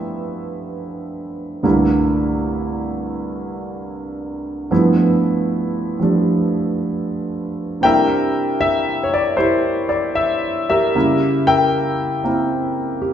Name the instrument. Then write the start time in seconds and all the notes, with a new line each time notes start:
grand piano
Already playing: G2 F3 A3 B3 E4 A4 B4 E5
1.63 C2 G2 D3 A3 A#3 E4
4.71 G2 F3 A3 B3 E4
6.00 F3 G3 A3 D4
7.81 C3 G3 A#3 C4 G5
7.85 D4 E4 A#4 E5
8.61 E5
9.04 C#5
9.14 D5
9.37 E4 G4 C5
9.89 D5
10.15 E5
10.70 G4 A#4 E5
10.95 C#3 G3 A#3 E4
11.47 A#4 E5 G5
12.24 A#3 C4 E4
13.02 G4